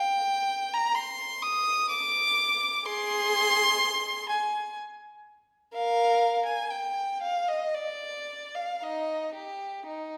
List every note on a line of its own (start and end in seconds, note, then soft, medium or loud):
0.00 0.74 G5 loud
0.74 0.97 A#5 medium
0.95 1.43 C6 medium
1.42 1.90 D#6 medium
1.90 2.82 D6 loud
2.85 4.25 G#4 medium
2.85 4.29 C6 loud
4.29 4.76 G#5 medium
5.74 6.43 A#4 medium
5.74 6.43 F5 medium
6.46 6.70 G#5 medium
6.71 7.22 G5 medium
7.22 7.48 F5 medium
7.48 7.75 D#5 medium
7.74 8.54 D5 medium
8.55 8.82 F5 medium
8.83 9.32 D#4 soft
8.83 9.36 D#5 medium
9.34 9.86 G4 medium
9.88 10.18 D#4 medium